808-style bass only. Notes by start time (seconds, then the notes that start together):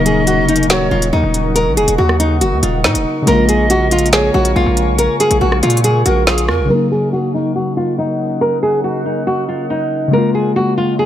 Already playing: D#1
0.38 F1
0.65 D#1
0.91 D#1
1.13 D#2
1.24 D#1
1.66 A#1
1.77 D#1
1.88 D#1
1.99 D#2
2.41 F1
2.52 D#2
2.63 D#1
2.84 A#2
2.95 D#1
3.27 A#1
4.34 A#1
4.56 A#1
4.66 A#1
4.88 B1
4.99 A#1
5.31 A#1
5.41 A#1
5.63 A#2
6.06 A#1
6.49 F2
6.59 A#1